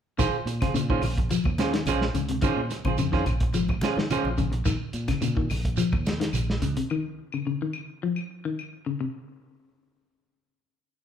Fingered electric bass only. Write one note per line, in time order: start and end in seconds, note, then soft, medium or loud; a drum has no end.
0.19 0.33 A#1 medium
0.33 muted fingered electric bass stroke soft
0.45 0.60 A#2 medium
0.74 1.00 A#2 medium
1.03 1.29 A#1 medium
1.45 1.71 D#2 medium
1.86 2.12 A#1 medium
2.14 2.40 C#2 medium
2.56 2.69 A#2 medium
2.85 2.97 A#1 medium
2.98 3.24 F2 medium
3.26 3.53 A#1 medium
3.53 3.80 G#1 medium
4.24 4.63 A#1 medium
4.66 4.80 A#1 loud
4.94 5.08 A#2 medium
5.21 5.48 A#2 medium
5.50 5.76 A#1 medium
5.93 6.19 D#2 medium
6.33 6.60 A#1 medium
6.62 6.76 C#2 medium